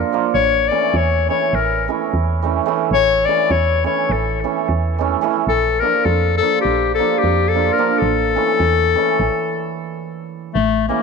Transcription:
0.00 0.11 F3 medium
0.00 0.10 A#4 medium
0.12 0.40 F3 medium
0.12 0.32 A#3 medium
0.12 0.32 D4 medium
0.12 0.32 F4 medium
0.34 0.70 A1 medium
0.34 0.70 C#5 loud
0.68 1.27 E3 soft
0.68 0.91 A3 soft
0.68 0.91 C#4 medium
0.68 0.98 D5 medium
0.73 0.92 E4 medium
0.94 1.30 E2 loud
0.94 1.29 C#5 medium
1.28 1.87 E3 medium
1.28 1.50 A3 soft
1.28 1.50 C#4 soft
1.28 1.50 E4 medium
1.28 1.56 C#5 medium
1.53 1.89 A1 medium
1.53 1.88 A#4 medium
1.88 2.41 E3 medium
1.88 2.09 A3 medium
1.88 2.09 C#4 medium
1.88 2.10 E4 medium
2.14 2.61 E2 medium
2.42 2.65 E3 medium
2.42 2.63 A3 medium
2.42 2.64 C#4 medium
2.42 2.64 E4 medium
2.66 3.25 E3 medium
2.66 2.87 A3 medium
2.66 2.88 C#4 medium
2.66 2.88 E4 medium
2.91 3.27 A1 medium
2.91 3.27 C#5 loud
3.25 3.83 E3 medium
3.25 3.48 A3 medium
3.25 3.48 C#4 soft
3.25 3.48 E4 medium
3.25 3.53 D5 loud
3.50 3.86 E2 loud
3.50 3.85 C#5 medium
3.84 4.43 E3 medium
3.84 4.06 A3 soft
3.84 4.06 C#4 medium
3.84 4.06 E4 medium
3.84 4.13 C#5 medium
4.09 4.45 A1 medium
4.09 4.45 A4 medium
4.44 4.97 E3 medium
4.44 4.65 A3 soft
4.44 4.65 C#4 medium
4.44 4.65 E4 medium
4.69 5.16 E2 medium
4.98 5.20 E3 medium
4.98 5.19 A3 medium
4.98 5.20 C#4 medium
4.98 5.20 E4 medium
5.21 5.53 E3 medium
5.21 5.43 A3 medium
5.21 5.43 C#4 medium
5.21 5.44 E4 medium
5.47 5.83 A#1 medium
5.47 5.81 A4 loud
5.80 6.39 F3 medium
5.80 6.02 A#3 soft
5.80 6.02 D4 soft
5.80 6.06 A#4 medium
5.84 6.04 F4 medium
6.05 6.41 F2 loud
6.05 6.37 A4 loud
6.38 6.97 F3 medium
6.38 6.61 A4 loud
6.42 6.62 A#3 soft
6.42 6.62 D4 soft
6.42 6.62 F4 medium
6.61 7.00 A#1 medium
6.61 6.94 G4 medium
6.95 7.54 F3 medium
6.95 7.20 A4 loud
6.99 7.20 A#3 medium
6.99 7.20 D4 soft
6.99 7.21 F4 medium
7.18 7.50 G4 medium
7.24 7.71 F2 medium
7.49 7.74 A4 medium
7.55 7.77 F3 medium
7.55 7.74 A#3 soft
7.55 7.75 D4 medium
7.55 7.75 F4 medium
7.73 8.00 A#4 medium
7.78 8.07 F3 medium
7.78 7.98 A#3 medium
7.78 7.98 D4 medium
7.78 7.98 F4 medium
7.98 8.37 A1 loud
7.98 10.06 A4 loud
8.35 8.94 E3 medium
8.35 8.57 A3 soft
8.35 8.57 C#4 medium
8.35 8.57 E4 medium
8.60 8.96 E2 medium
8.95 10.61 E3 medium
8.95 9.16 A3 medium
8.95 9.16 C#4 medium
8.95 9.17 E4 medium
9.19 9.30 A1 medium
10.54 10.91 A1 loud
10.54 10.86 A3 loud
10.88 11.03 E3 medium
10.88 11.03 A3 soft
10.88 11.03 A#3 medium
10.88 11.03 C#4 medium
10.88 11.03 E4 medium

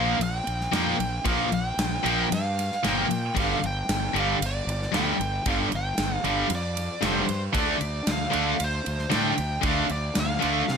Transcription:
0.00 0.14 A#1 medium
0.00 0.15 A#2 medium
0.00 0.16 F3 medium
0.00 0.17 A#3 loud
0.00 0.23 F5 loud
0.19 0.39 A#1 loud
0.19 0.74 G5 medium
0.19 ride medium
0.47 0.66 A#1 medium
0.47 ride medium
0.61 snare soft
0.72 0.92 F2 medium
0.72 0.94 A#2 medium
0.72 0.94 F3 medium
0.72 0.95 A#3 medium
0.72 1.24 G5 loud
0.72 snare loud
0.72 ride medium
0.99 1.18 A#1 medium
0.99 ride medium
1.25 1.45 A#1 medium
1.25 1.47 A#2 medium
1.25 1.47 F3 loud
1.25 1.47 A#3 loud
1.25 1.52 F5 loud
1.25 kick loud
1.25 ride loud
1.52 1.71 A#1 medium
1.52 2.07 G5 medium
1.52 ride medium
1.77 1.97 A#1 medium
1.77 snare loud
1.77 ride loud
2.03 2.24 A#1 medium
2.03 2.25 A#2 medium
2.03 2.26 F3 medium
2.03 2.26 A#3 medium
2.03 ride medium
2.08 2.31 G5 medium
2.31 2.69 G2 loud
2.31 2.87 F5 medium
2.31 ride medium
2.59 snare soft
2.59 ride medium
2.72 snare soft
2.84 3.03 G1 medium
2.84 3.05 A#2 medium
2.84 3.05 F3 medium
2.84 3.05 A#3 loud
2.84 snare loud
2.84 ride medium
2.88 3.35 G5 medium
3.11 3.29 A#2 medium
3.11 ride medium
3.35 3.55 G1 medium
3.35 3.56 G2 medium
3.35 3.57 D3 loud
3.35 3.57 G3 medium
3.35 kick loud
3.35 ride medium
3.39 3.65 F5 medium
3.63 3.81 G1 medium
3.63 4.18 G5 medium
3.63 ride medium
3.89 4.08 G1 medium
3.89 snare loud
3.89 ride loud
4.14 4.33 G1 medium
4.14 4.35 G2 medium
4.14 4.36 D3 medium
4.14 4.36 G3 loud
4.14 ride medium
4.19 4.44 F5 medium
4.41 4.60 G1 medium
4.41 ride loud
4.46 4.97 D5 medium
4.67 4.86 G1 loud
4.67 ride medium
4.82 snare soft
4.92 5.12 D2 medium
4.92 5.14 G2 medium
4.92 5.14 D3 medium
4.92 5.15 G3 loud
4.92 5.48 G5 loud
4.92 snare loud
4.92 ride medium
5.20 5.39 G1 medium
5.20 ride medium
5.46 5.65 G1 medium
5.46 5.67 G2 medium
5.46 5.67 D3 medium
5.46 5.67 G3 loud
5.46 5.56 F5 medium
5.46 kick loud
5.46 ride medium
5.72 5.91 G1 medium
5.72 ride medium
5.76 6.28 G5 loud
5.98 6.17 G1 medium
5.98 snare loud
5.98 ride medium
6.24 6.43 G1 medium
6.24 6.46 G2 medium
6.24 6.46 D3 medium
6.24 6.46 G3 loud
6.24 ride medium
6.29 6.51 F5 medium
6.50 6.88 F2 medium
6.50 ride loud
6.55 7.05 D5 medium
6.77 snare soft
6.77 ride medium
7.01 7.21 F1 medium
7.01 7.23 G2 medium
7.01 7.23 D3 loud
7.01 7.24 G3 loud
7.01 snare loud
7.01 ride loud
7.06 7.41 C5 medium
7.29 7.48 G2 medium
7.29 ride medium
7.53 7.74 D2 medium
7.53 7.75 D3 medium
7.53 7.75 A3 loud
7.53 7.76 D4 loud
7.53 kick loud
7.53 ride loud
7.59 8.11 D5 medium
7.81 8.00 D2 medium
7.81 ride medium
8.07 8.26 D2 medium
8.07 snare loud
8.07 ride loud
8.12 8.64 F5 medium
8.30 8.53 D2 medium
8.30 8.53 D3 medium
8.30 8.53 A3 medium
8.30 8.54 D4 loud
8.30 ride medium
8.60 8.79 D2 loud
8.60 ride loud
8.64 9.11 C5 medium
8.86 9.05 D2 medium
8.86 ride medium
8.99 snare soft
9.10 9.32 A2 medium
9.10 9.32 D3 medium
9.10 9.32 A3 medium
9.10 9.33 D4 medium
9.10 snare loud
9.10 ride medium
9.15 9.63 G5 medium
9.38 9.57 D2 medium
9.38 ride medium
9.61 9.83 D2 medium
9.61 9.84 D3 loud
9.61 9.84 A3 medium
9.61 9.84 D4 loud
9.61 kick loud
9.61 ride medium
9.67 9.90 F5 medium
9.89 10.09 D2 medium
9.89 10.18 D5 medium
9.89 ride medium
10.15 10.36 D2 medium
10.15 snare loud
10.15 ride loud
10.20 10.71 F5 loud
10.39 10.62 D3 medium
10.39 10.62 A3 medium
10.39 10.63 D4 medium
10.39 ride medium
10.44 10.62 D2 medium
10.68 10.77 C3 medium
10.68 10.77 F5 medium
10.68 snare medium

